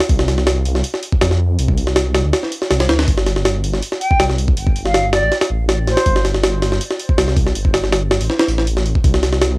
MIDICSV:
0, 0, Header, 1, 4, 480
1, 0, Start_track
1, 0, Tempo, 372671
1, 126, Time_signature, 4, 2, 24, 8
1, 12343, End_track
2, 0, Start_track
2, 0, Title_t, "Flute"
2, 0, Program_c, 0, 73
2, 5165, Note_on_c, 0, 79, 90
2, 5455, Note_off_c, 0, 79, 0
2, 6249, Note_on_c, 0, 77, 91
2, 6536, Note_off_c, 0, 77, 0
2, 6606, Note_on_c, 0, 74, 100
2, 6896, Note_off_c, 0, 74, 0
2, 7568, Note_on_c, 0, 72, 90
2, 8047, Note_off_c, 0, 72, 0
2, 12343, End_track
3, 0, Start_track
3, 0, Title_t, "Detuned saw bass"
3, 0, Program_c, 1, 39
3, 123, Note_on_c, 1, 36, 101
3, 1066, Note_off_c, 1, 36, 0
3, 1564, Note_on_c, 1, 41, 94
3, 2026, Note_off_c, 1, 41, 0
3, 2046, Note_on_c, 1, 36, 104
3, 2871, Note_off_c, 1, 36, 0
3, 2889, Note_on_c, 1, 38, 84
3, 2994, Note_off_c, 1, 38, 0
3, 3486, Note_on_c, 1, 36, 107
3, 3703, Note_off_c, 1, 36, 0
3, 3725, Note_on_c, 1, 38, 91
3, 3942, Note_off_c, 1, 38, 0
3, 3964, Note_on_c, 1, 31, 98
3, 4906, Note_off_c, 1, 31, 0
3, 5404, Note_on_c, 1, 36, 97
3, 5867, Note_off_c, 1, 36, 0
3, 5884, Note_on_c, 1, 31, 98
3, 6710, Note_off_c, 1, 31, 0
3, 6730, Note_on_c, 1, 33, 81
3, 6834, Note_off_c, 1, 33, 0
3, 7085, Note_on_c, 1, 33, 101
3, 7670, Note_off_c, 1, 33, 0
3, 7805, Note_on_c, 1, 31, 103
3, 8747, Note_off_c, 1, 31, 0
3, 9245, Note_on_c, 1, 36, 95
3, 9707, Note_off_c, 1, 36, 0
3, 9724, Note_on_c, 1, 31, 100
3, 10550, Note_off_c, 1, 31, 0
3, 10569, Note_on_c, 1, 33, 81
3, 10673, Note_off_c, 1, 33, 0
3, 10922, Note_on_c, 1, 33, 104
3, 11509, Note_off_c, 1, 33, 0
3, 11645, Note_on_c, 1, 36, 101
3, 12343, Note_off_c, 1, 36, 0
3, 12343, End_track
4, 0, Start_track
4, 0, Title_t, "Drums"
4, 7, Note_on_c, 9, 38, 104
4, 7, Note_on_c, 9, 46, 80
4, 123, Note_off_c, 9, 46, 0
4, 123, Note_on_c, 9, 36, 113
4, 123, Note_on_c, 9, 46, 92
4, 136, Note_off_c, 9, 38, 0
4, 248, Note_on_c, 9, 38, 61
4, 252, Note_off_c, 9, 36, 0
4, 252, Note_off_c, 9, 46, 0
4, 364, Note_off_c, 9, 38, 0
4, 364, Note_on_c, 9, 38, 56
4, 364, Note_on_c, 9, 46, 68
4, 490, Note_off_c, 9, 38, 0
4, 490, Note_on_c, 9, 38, 44
4, 493, Note_off_c, 9, 46, 0
4, 604, Note_off_c, 9, 38, 0
4, 604, Note_on_c, 9, 38, 119
4, 604, Note_on_c, 9, 46, 88
4, 732, Note_off_c, 9, 38, 0
4, 732, Note_off_c, 9, 46, 0
4, 844, Note_on_c, 9, 46, 68
4, 970, Note_on_c, 9, 38, 39
4, 973, Note_off_c, 9, 46, 0
4, 1083, Note_on_c, 9, 46, 87
4, 1099, Note_off_c, 9, 38, 0
4, 1210, Note_on_c, 9, 38, 46
4, 1212, Note_off_c, 9, 46, 0
4, 1324, Note_on_c, 9, 46, 72
4, 1339, Note_off_c, 9, 38, 0
4, 1450, Note_on_c, 9, 36, 96
4, 1453, Note_off_c, 9, 46, 0
4, 1565, Note_on_c, 9, 38, 120
4, 1565, Note_on_c, 9, 46, 90
4, 1579, Note_off_c, 9, 36, 0
4, 1690, Note_off_c, 9, 38, 0
4, 1690, Note_on_c, 9, 38, 39
4, 1693, Note_off_c, 9, 46, 0
4, 1819, Note_off_c, 9, 38, 0
4, 2045, Note_on_c, 9, 46, 88
4, 2170, Note_on_c, 9, 36, 94
4, 2174, Note_off_c, 9, 46, 0
4, 2287, Note_on_c, 9, 46, 69
4, 2299, Note_off_c, 9, 36, 0
4, 2410, Note_on_c, 9, 38, 45
4, 2416, Note_off_c, 9, 46, 0
4, 2524, Note_off_c, 9, 38, 0
4, 2524, Note_on_c, 9, 38, 115
4, 2524, Note_on_c, 9, 46, 89
4, 2653, Note_off_c, 9, 38, 0
4, 2653, Note_off_c, 9, 46, 0
4, 2764, Note_on_c, 9, 38, 103
4, 2764, Note_on_c, 9, 46, 79
4, 2892, Note_off_c, 9, 38, 0
4, 2892, Note_off_c, 9, 46, 0
4, 3003, Note_on_c, 9, 38, 99
4, 3003, Note_on_c, 9, 46, 77
4, 3130, Note_off_c, 9, 38, 0
4, 3130, Note_on_c, 9, 38, 34
4, 3132, Note_off_c, 9, 46, 0
4, 3243, Note_on_c, 9, 46, 82
4, 3259, Note_off_c, 9, 38, 0
4, 3371, Note_on_c, 9, 38, 40
4, 3372, Note_off_c, 9, 46, 0
4, 3484, Note_off_c, 9, 38, 0
4, 3484, Note_on_c, 9, 38, 106
4, 3484, Note_on_c, 9, 46, 78
4, 3607, Note_off_c, 9, 38, 0
4, 3607, Note_off_c, 9, 46, 0
4, 3607, Note_on_c, 9, 38, 104
4, 3607, Note_on_c, 9, 46, 80
4, 3723, Note_off_c, 9, 38, 0
4, 3723, Note_off_c, 9, 46, 0
4, 3723, Note_on_c, 9, 38, 103
4, 3723, Note_on_c, 9, 46, 79
4, 3849, Note_off_c, 9, 38, 0
4, 3849, Note_off_c, 9, 46, 0
4, 3849, Note_on_c, 9, 38, 104
4, 3849, Note_on_c, 9, 46, 79
4, 3963, Note_off_c, 9, 46, 0
4, 3963, Note_on_c, 9, 46, 88
4, 3964, Note_on_c, 9, 36, 107
4, 3978, Note_off_c, 9, 38, 0
4, 4089, Note_on_c, 9, 38, 60
4, 4092, Note_off_c, 9, 46, 0
4, 4093, Note_off_c, 9, 36, 0
4, 4204, Note_off_c, 9, 38, 0
4, 4204, Note_on_c, 9, 38, 58
4, 4204, Note_on_c, 9, 46, 69
4, 4330, Note_off_c, 9, 38, 0
4, 4330, Note_on_c, 9, 38, 45
4, 4333, Note_off_c, 9, 46, 0
4, 4445, Note_off_c, 9, 38, 0
4, 4445, Note_on_c, 9, 38, 115
4, 4445, Note_on_c, 9, 46, 90
4, 4574, Note_off_c, 9, 38, 0
4, 4574, Note_off_c, 9, 46, 0
4, 4685, Note_on_c, 9, 46, 68
4, 4809, Note_on_c, 9, 38, 38
4, 4814, Note_off_c, 9, 46, 0
4, 4925, Note_on_c, 9, 46, 87
4, 4938, Note_off_c, 9, 38, 0
4, 5048, Note_on_c, 9, 38, 47
4, 5053, Note_off_c, 9, 46, 0
4, 5166, Note_on_c, 9, 46, 70
4, 5177, Note_off_c, 9, 38, 0
4, 5289, Note_on_c, 9, 36, 95
4, 5294, Note_off_c, 9, 46, 0
4, 5405, Note_on_c, 9, 38, 117
4, 5405, Note_on_c, 9, 46, 89
4, 5418, Note_off_c, 9, 36, 0
4, 5531, Note_off_c, 9, 38, 0
4, 5531, Note_on_c, 9, 38, 40
4, 5534, Note_off_c, 9, 46, 0
4, 5645, Note_on_c, 9, 46, 70
4, 5659, Note_off_c, 9, 38, 0
4, 5770, Note_on_c, 9, 36, 96
4, 5774, Note_off_c, 9, 46, 0
4, 5885, Note_on_c, 9, 46, 91
4, 5899, Note_off_c, 9, 36, 0
4, 6010, Note_on_c, 9, 36, 97
4, 6014, Note_off_c, 9, 46, 0
4, 6128, Note_on_c, 9, 46, 68
4, 6139, Note_off_c, 9, 36, 0
4, 6253, Note_on_c, 9, 38, 43
4, 6257, Note_off_c, 9, 46, 0
4, 6367, Note_off_c, 9, 38, 0
4, 6367, Note_on_c, 9, 38, 115
4, 6367, Note_on_c, 9, 46, 87
4, 6495, Note_off_c, 9, 38, 0
4, 6495, Note_off_c, 9, 46, 0
4, 6607, Note_on_c, 9, 38, 108
4, 6607, Note_on_c, 9, 46, 80
4, 6736, Note_off_c, 9, 38, 0
4, 6736, Note_off_c, 9, 46, 0
4, 6850, Note_on_c, 9, 38, 41
4, 6850, Note_on_c, 9, 46, 60
4, 6974, Note_off_c, 9, 38, 0
4, 6974, Note_off_c, 9, 46, 0
4, 6974, Note_on_c, 9, 38, 108
4, 6974, Note_on_c, 9, 46, 81
4, 7103, Note_off_c, 9, 38, 0
4, 7103, Note_off_c, 9, 46, 0
4, 7327, Note_on_c, 9, 38, 108
4, 7327, Note_on_c, 9, 46, 81
4, 7456, Note_off_c, 9, 38, 0
4, 7456, Note_off_c, 9, 46, 0
4, 7567, Note_on_c, 9, 38, 40
4, 7567, Note_on_c, 9, 46, 62
4, 7690, Note_off_c, 9, 38, 0
4, 7690, Note_off_c, 9, 46, 0
4, 7690, Note_on_c, 9, 38, 103
4, 7690, Note_on_c, 9, 46, 81
4, 7805, Note_off_c, 9, 46, 0
4, 7805, Note_on_c, 9, 46, 93
4, 7806, Note_on_c, 9, 36, 111
4, 7819, Note_off_c, 9, 38, 0
4, 7932, Note_on_c, 9, 38, 59
4, 7933, Note_off_c, 9, 46, 0
4, 7935, Note_off_c, 9, 36, 0
4, 8046, Note_off_c, 9, 38, 0
4, 8046, Note_on_c, 9, 38, 58
4, 8046, Note_on_c, 9, 46, 67
4, 8171, Note_off_c, 9, 38, 0
4, 8171, Note_on_c, 9, 38, 46
4, 8175, Note_off_c, 9, 46, 0
4, 8287, Note_off_c, 9, 38, 0
4, 8287, Note_on_c, 9, 38, 117
4, 8287, Note_on_c, 9, 46, 90
4, 8416, Note_off_c, 9, 38, 0
4, 8416, Note_off_c, 9, 46, 0
4, 8528, Note_on_c, 9, 38, 55
4, 8528, Note_on_c, 9, 46, 68
4, 8654, Note_off_c, 9, 38, 0
4, 8654, Note_on_c, 9, 38, 39
4, 8657, Note_off_c, 9, 46, 0
4, 8769, Note_on_c, 9, 46, 84
4, 8783, Note_off_c, 9, 38, 0
4, 8893, Note_on_c, 9, 38, 45
4, 8898, Note_off_c, 9, 46, 0
4, 9008, Note_on_c, 9, 46, 71
4, 9022, Note_off_c, 9, 38, 0
4, 9132, Note_on_c, 9, 36, 94
4, 9137, Note_off_c, 9, 46, 0
4, 9247, Note_on_c, 9, 38, 118
4, 9247, Note_on_c, 9, 46, 89
4, 9260, Note_off_c, 9, 36, 0
4, 9375, Note_off_c, 9, 38, 0
4, 9375, Note_on_c, 9, 38, 40
4, 9376, Note_off_c, 9, 46, 0
4, 9486, Note_on_c, 9, 36, 101
4, 9489, Note_on_c, 9, 46, 80
4, 9504, Note_off_c, 9, 38, 0
4, 9615, Note_off_c, 9, 36, 0
4, 9615, Note_on_c, 9, 38, 52
4, 9617, Note_off_c, 9, 46, 0
4, 9728, Note_on_c, 9, 46, 88
4, 9744, Note_off_c, 9, 38, 0
4, 9851, Note_on_c, 9, 36, 95
4, 9857, Note_off_c, 9, 46, 0
4, 9967, Note_on_c, 9, 38, 105
4, 9967, Note_on_c, 9, 46, 81
4, 9980, Note_off_c, 9, 36, 0
4, 10092, Note_off_c, 9, 38, 0
4, 10092, Note_on_c, 9, 38, 44
4, 10096, Note_off_c, 9, 46, 0
4, 10206, Note_off_c, 9, 38, 0
4, 10206, Note_on_c, 9, 38, 106
4, 10206, Note_on_c, 9, 46, 81
4, 10335, Note_off_c, 9, 38, 0
4, 10335, Note_off_c, 9, 46, 0
4, 10444, Note_on_c, 9, 38, 105
4, 10570, Note_on_c, 9, 46, 80
4, 10573, Note_off_c, 9, 38, 0
4, 10686, Note_on_c, 9, 38, 44
4, 10699, Note_off_c, 9, 46, 0
4, 10811, Note_off_c, 9, 38, 0
4, 10811, Note_on_c, 9, 38, 106
4, 10927, Note_on_c, 9, 46, 81
4, 10940, Note_off_c, 9, 38, 0
4, 11053, Note_on_c, 9, 38, 44
4, 11056, Note_off_c, 9, 46, 0
4, 11168, Note_on_c, 9, 46, 83
4, 11182, Note_off_c, 9, 38, 0
4, 11293, Note_on_c, 9, 38, 42
4, 11297, Note_off_c, 9, 46, 0
4, 11408, Note_on_c, 9, 46, 62
4, 11422, Note_off_c, 9, 38, 0
4, 11531, Note_on_c, 9, 36, 85
4, 11537, Note_off_c, 9, 46, 0
4, 11646, Note_off_c, 9, 36, 0
4, 11646, Note_on_c, 9, 36, 116
4, 11646, Note_on_c, 9, 46, 91
4, 11772, Note_on_c, 9, 38, 60
4, 11775, Note_off_c, 9, 36, 0
4, 11775, Note_off_c, 9, 46, 0
4, 11887, Note_off_c, 9, 38, 0
4, 11887, Note_on_c, 9, 38, 58
4, 11887, Note_on_c, 9, 46, 68
4, 12012, Note_off_c, 9, 38, 0
4, 12012, Note_on_c, 9, 38, 47
4, 12016, Note_off_c, 9, 46, 0
4, 12127, Note_off_c, 9, 38, 0
4, 12127, Note_on_c, 9, 38, 113
4, 12127, Note_on_c, 9, 46, 88
4, 12256, Note_off_c, 9, 38, 0
4, 12256, Note_off_c, 9, 46, 0
4, 12343, End_track
0, 0, End_of_file